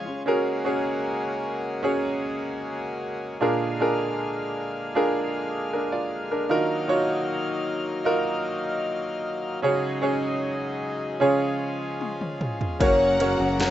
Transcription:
0.00 0.28 C#3 medium
0.00 0.18 G#3 medium
0.00 0.18 C#4 medium
0.00 0.19 F4 medium
0.00 0.24 F4 medium
0.00 0.23 G#4 medium
0.00 0.23 C#5 medium
0.00 0.23 G#5 medium
0.06 0.28 G#3 soft
0.06 0.27 C#4 medium
0.06 0.26 F4 medium
0.26 3.37 C#3 medium
0.26 6.46 G#3 medium
0.26 9.60 A#3 medium
0.26 0.63 C#4 medium
0.26 3.37 F#4 medium
0.26 0.63 F#4 medium
0.26 6.46 G#4 medium
0.26 0.64 G#4 medium
0.26 0.65 A#4 medium
0.64 1.77 C#4 medium
0.64 1.77 F#4 medium
0.64 1.78 G#4 medium
0.64 1.78 C#5 medium
1.83 3.32 C#4 medium
1.83 3.32 F#4 medium
1.83 3.32 G#4 medium
1.83 3.33 C#5 medium
3.40 4.53 A#2 medium
3.40 6.47 D3 medium
3.40 3.77 D4 medium
3.40 3.77 F4 medium
3.40 3.78 G#4 medium
3.40 3.78 A#4 medium
3.40 9.60 F5 medium
3.80 4.90 D4 medium
3.80 4.90 F4 medium
3.80 4.90 G#4 medium
3.80 4.91 A#4 medium
4.95 5.34 D4 medium
4.95 5.34 F4 medium
4.95 5.34 G#4 medium
4.95 5.34 A#4 medium
5.73 5.92 D4 medium
5.73 5.91 A#4 medium
5.92 6.29 F4 medium
5.92 6.29 D5 medium
6.31 6.68 D4 medium
6.31 6.49 A#4 medium
6.49 9.60 D#3 medium
6.49 7.63 D#3 medium
6.49 9.61 F#3 medium
6.49 11.17 D#4 medium
6.49 6.86 D#4 medium
6.49 6.87 F4 medium
6.49 6.87 F#4 medium
6.49 6.88 A#4 medium
6.88 8.00 D#4 medium
6.88 8.01 F4 medium
6.88 8.01 F#4 medium
6.88 8.01 C#5 medium
8.05 9.55 D#4 medium
8.05 9.55 F4 medium
8.05 9.55 F#4 medium
8.05 9.56 A#4 loud
9.62 10.78 C#3 medium
9.62 13.70 C#3 medium
9.62 11.20 F#3 medium
9.62 12.78 G#3 medium
9.62 10.00 C#4 medium
9.62 10.00 F#4 medium
9.62 10.01 G#4 medium
9.62 12.78 G#4 medium
9.62 10.01 C#5 medium
10.02 11.15 C#4 medium
10.02 11.15 F#4 medium
10.02 11.15 G#4 medium
10.02 11.15 C#5 medium
11.20 12.37 C#3 medium
11.20 12.79 F3 medium
11.20 12.72 C#4 medium
11.20 12.72 F4 medium
11.20 12.79 F4 medium
11.20 12.73 G#4 medium
11.20 12.73 C#5 medium
12.01 high tom medium
12.21 mid tom medium
12.41 mid tom medium
12.61 floor tom medium
12.79 13.36 F#1 loud
12.79 13.20 F#2 medium
12.79 13.20 C#3 medium
12.79 13.17 F#3 medium
12.79 13.70 F#3 medium
12.79 13.19 A#3 loud
12.79 13.70 A#3 medium
12.79 13.18 C#4 medium
12.79 13.20 C#4 medium
12.79 13.18 F#4 medium
12.79 13.70 F#4 medium
12.79 13.21 F#4 medium
12.79 13.70 A#4 medium
12.79 13.19 A#4 medium
12.79 13.19 C#5 medium
12.79 13.56 F#5 medium
12.79 kick loud
12.79 ride medium
13.19 13.39 F#3 medium
13.19 13.39 A#3 medium
13.19 13.70 C#4 medium
13.19 13.39 C#4 medium
13.19 13.70 F#4 medium
13.19 13.37 F#4 medium
13.19 13.70 A#4 medium
13.19 13.70 C#5 medium
13.19 ride medium
13.38 13.70 F#1 medium
13.38 13.58 F#3 soft
13.38 13.59 A#3 soft
13.38 13.59 C#4 medium
13.38 13.59 F#4 medium
13.59 13.70 F#2 medium
13.59 13.70 C#3 medium
13.59 13.70 F#3 medium
13.59 13.70 A#3 medium
13.59 13.70 C#4 medium
13.59 13.70 F#4 loud
13.59 13.70 A#5 loud
13.59 snare loud
13.59 ride medium

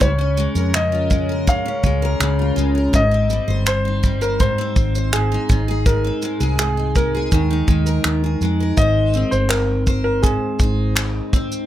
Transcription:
0.00 0.46 C#2 loud
0.00 0.73 C#3 medium
0.00 0.77 C#5 medium
0.00 kick loud
0.00 shaker medium
0.18 1.64 C#4 soft
0.37 1.10 G#3 medium
0.37 shaker soft
0.55 1.61 F2 medium
0.55 1.28 A#4 medium
0.55 shaker soft
0.74 1.46 C#3 medium
0.74 1.50 D#5 medium
0.74 finger snap medium
0.74 shaker medium
0.92 2.38 F4 medium
1.10 1.83 G#3 medium
1.10 kick medium
1.10 shaker soft
1.29 2.01 A#4 medium
1.47 2.19 C#3 medium
1.47 2.54 F5 medium
1.47 kick medium
1.47 shaker medium
1.66 3.01 C#4 medium
1.84 2.14 C#2 medium
1.84 2.56 G#3 medium
1.84 kick medium
1.84 shaker soft
2.02 2.74 A#4 medium
2.20 2.50 C#2 medium
2.20 3.01 C#3 medium
2.20 finger snap medium
2.20 shaker medium
2.39 3.01 F4 medium
2.56 2.87 C#2 medium
2.56 3.30 G#3 medium
2.56 shaker soft
2.75 3.01 A#4 medium
2.93 3.38 G#1 medium
2.93 3.66 G#2 medium
2.93 3.70 D#5 medium
2.93 kick loud
2.93 shaker medium
3.11 4.58 C4 soft
3.30 4.02 G3 medium
3.30 shaker soft
3.48 4.54 G1 medium
3.48 4.21 C5 medium
3.66 4.23 C5 medium
3.66 finger snap medium
3.66 shaker medium
3.85 5.31 D#4 medium
4.03 4.76 G3 medium
4.03 kick medium
4.03 shaker soft
4.21 4.40 A#4 medium
4.21 4.95 C5 medium
4.21 shaker soft
4.40 5.12 G#2 medium
4.40 5.15 C5 medium
4.40 kick medium
4.40 shaker medium
4.58 5.57 C4 medium
4.76 5.36 G#1 medium
4.76 kick medium
4.76 shaker soft
4.95 5.57 C5 medium
4.95 shaker soft
5.13 5.48 G#2 medium
5.13 5.82 G#4 medium
5.13 finger snap medium
5.13 shaker medium
5.32 6.77 D#4 medium
5.49 6.10 G#1 medium
5.49 5.85 G#2 medium
5.49 kick medium
5.49 shaker soft
5.68 6.40 G#4 medium
5.86 6.58 G#2 medium
5.86 6.61 A#4 medium
5.86 kick loud
5.86 shaker medium
6.04 7.39 C4 soft
6.22 6.96 G#3 medium
6.22 shaker soft
6.40 7.28 C2 medium
6.40 7.14 G#4 medium
6.40 shaker soft
6.59 7.40 G#2 medium
6.59 6.97 G#4 medium
6.59 finger snap medium
6.59 shaker medium
6.77 7.51 D#4 soft
6.95 7.68 G#3 medium
6.95 8.38 A#4 medium
6.95 kick medium
6.95 shaker soft
7.15 7.86 G#4 medium
7.32 7.62 D#2 loud
7.32 8.04 D#3 medium
7.32 kick medium
7.32 shaker medium
7.51 9.14 D#4 medium
7.68 7.98 D#2 medium
7.68 8.42 G#3 medium
7.68 kick medium
7.68 shaker soft
7.86 8.59 A#4 soft
7.86 shaker soft
8.04 8.35 D#2 medium
8.04 11.55 D#3 medium
8.04 finger snap loud
8.04 shaker medium
8.24 10.61 G#4 medium
8.41 8.71 F2 medium
8.41 11.66 G#3 medium
8.41 shaker soft
8.60 8.79 A#4 medium
8.77 9.22 G#1 loud
8.77 9.86 C5 medium
8.77 9.28 D#5 medium
8.77 kick loud
8.77 shaker medium
9.13 11.32 C4 medium
9.13 shaker soft
9.31 10.38 G1 medium
9.31 9.51 C5 medium
9.31 shaker soft
9.50 10.01 A#4 medium
9.50 finger snap medium
9.50 clap medium
9.50 shaker medium
9.87 11.66 C5 medium
9.87 kick medium
9.87 shaker soft
10.04 10.22 A#4 medium
10.22 11.66 G#2 medium
10.22 11.28 G#4 medium
10.22 kick medium
10.22 shaker medium
10.59 11.19 G#1 medium
10.59 11.66 D#4 medium
10.59 kick medium
10.59 shaker soft
10.96 finger snap loud
10.96 clap medium
10.96 shaker medium
11.33 11.66 C4 medium
11.33 kick medium
11.33 shaker soft
11.52 shaker medium

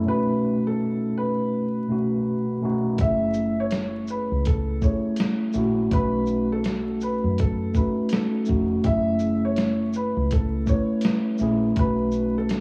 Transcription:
0.05 1.15 B2 medium
0.05 1.16 A3 medium
0.05 1.16 C#4 medium
0.05 1.16 D#4 medium
0.05 1.17 F#4 medium
0.05 0.63 B4 medium
0.67 1.14 A4 medium
1.18 2.96 B4 medium
1.88 2.47 B2 medium
1.88 2.48 A3 medium
1.88 2.48 C#4 medium
1.88 2.49 D#4 medium
1.88 2.49 F#4 medium
2.61 2.91 B2 medium
2.61 2.92 A3 medium
2.61 2.92 C#4 medium
2.61 2.93 D#4 medium
2.61 2.93 F#4 loud
2.98 4.27 F#1 medium
2.98 3.07 G#3 medium
2.98 4.09 C#4 medium
2.98 4.09 E4 medium
2.98 3.55 E5 medium
2.98 kick loud
2.98 closed hi-hat medium
3.02 4.11 A3 medium
3.02 4.10 G#4 medium
3.34 shaker soft
3.60 4.07 C#5 medium
3.71 snare loud
3.71 closed hi-hat medium
4.08 4.46 B4 medium
4.08 shaker soft
4.32 4.95 C#2 medium
4.45 4.79 A4 medium
4.45 kick medium
4.45 closed hi-hat medium
4.81 5.40 A3 medium
4.81 5.41 C#4 medium
4.81 5.42 E4 medium
4.81 5.42 G#4 medium
4.81 5.16 C#5 medium
4.81 kick medium
4.81 shaker soft
5.16 snare loud
5.16 closed hi-hat medium
5.53 5.87 A#1 medium
5.53 5.84 A3 medium
5.53 5.84 C#4 medium
5.53 5.85 E4 medium
5.53 shaker soft
5.57 5.86 F#4 medium
5.91 7.20 B1 medium
5.91 7.00 A3 medium
5.91 7.01 C#4 medium
5.91 7.02 D#4 medium
5.91 7.02 F#4 medium
5.91 6.48 B4 medium
5.91 kick loud
5.91 closed hi-hat medium
6.26 shaker soft
6.52 6.99 A4 medium
6.64 snare loud
6.64 closed hi-hat medium
7.01 7.35 B4 medium
7.01 shaker soft
7.24 7.87 F#2 medium
7.38 7.75 A4 medium
7.38 kick medium
7.38 closed hi-hat medium
7.74 8.33 A3 medium
7.74 8.34 C#4 medium
7.74 8.34 D#4 medium
7.74 8.35 F#4 medium
7.74 8.08 B4 medium
7.74 kick medium
7.74 shaker soft
8.09 8.45 A4 medium
8.09 snare loud
8.09 closed hi-hat medium
8.45 8.80 F1 medium
8.45 8.76 A3 medium
8.45 8.77 C#4 medium
8.45 8.78 D#4 medium
8.45 kick medium
8.45 shaker soft
8.50 8.78 F#4 medium
8.83 10.13 F#1 loud
8.83 9.93 A3 medium
8.83 9.94 C#4 medium
8.83 9.94 E4 medium
8.83 9.95 G#4 medium
8.83 9.41 E5 medium
8.83 kick loud
8.83 closed hi-hat medium
9.19 shaker soft
9.45 9.92 C#5 medium
9.56 snare medium
9.56 closed hi-hat medium
9.93 10.28 B4 medium
9.93 shaker soft
10.17 10.80 C#2 medium
10.31 10.65 A4 medium
10.31 kick medium
10.31 closed hi-hat medium
10.66 11.25 A3 medium
10.66 11.26 C#4 medium
10.66 11.26 E4 medium
10.66 11.27 B4 medium
10.66 11.01 C#5 medium
10.66 kick medium
10.66 shaker soft
11.01 snare loud
11.01 closed hi-hat medium
11.38 11.72 A#1 medium
11.38 11.69 A3 medium
11.38 11.70 C#4 medium
11.38 11.71 E4 medium
11.38 shaker soft
11.43 11.71 G#4 loud
11.76 12.60 B1 medium
11.76 12.60 A3 medium
11.76 12.60 C#4 medium
11.76 12.60 D#4 medium
11.76 12.60 F#4 medium
11.76 12.34 B4 medium
11.76 kick loud
11.76 closed hi-hat medium
12.12 shaker soft
12.38 12.60 A4 medium
12.49 snare loud
12.49 closed hi-hat medium

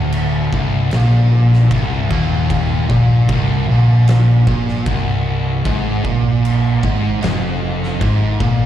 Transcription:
0.00 0.50 D1 loud
0.00 0.52 D2 loud
0.12 crash medium
0.52 0.90 C1 medium
0.52 0.91 C2 medium
0.52 kick loud
0.91 1.68 A#1 loud
0.91 1.69 A#2 loud
0.91 snare loud
0.91 crash medium
1.53 snare soft
1.70 2.08 C1 loud
1.70 2.08 C2 loud
1.70 kick loud
1.70 crash medium
2.09 2.86 D#1 medium
2.09 2.88 D#2 loud
2.09 kick loud
2.50 kick loud
2.50 crash medium
2.88 3.26 A#1 loud
2.88 3.27 A#2 loud
2.88 kick loud
3.27 3.66 C1 loud
3.27 3.67 C2 loud
3.27 kick loud
3.27 crash medium
3.32 3.69 C2 loud
3.67 4.43 A#1 loud
3.67 4.46 A#2 medium
3.71 4.46 A#2 loud
4.08 snare loud
4.08 crash medium
4.47 4.84 A#1 loud
4.47 4.86 A#2 loud
4.47 kick loud
4.69 snare soft
4.86 5.61 C1 loud
4.86 5.64 C2 loud
4.86 kick loud
4.86 crash medium
5.65 6.02 G#1 medium
5.65 6.04 G#2 loud
5.65 kick loud
5.65 crash medium
6.04 6.79 A#1 loud
6.04 6.82 A#2 loud
6.04 kick loud
6.45 crash medium
6.83 7.20 G#1 medium
6.83 7.22 G#2 loud
6.83 kick loud
7.22 7.97 F1 medium
7.22 8.01 F2 loud
7.22 snare loud
7.22 crash medium
7.83 snare soft
8.01 8.38 G#1 loud
8.01 8.40 G#2 loud
8.01 kick loud
8.01 crash medium
8.40 8.66 A#1 medium
8.40 8.66 A#2 loud
8.40 kick loud

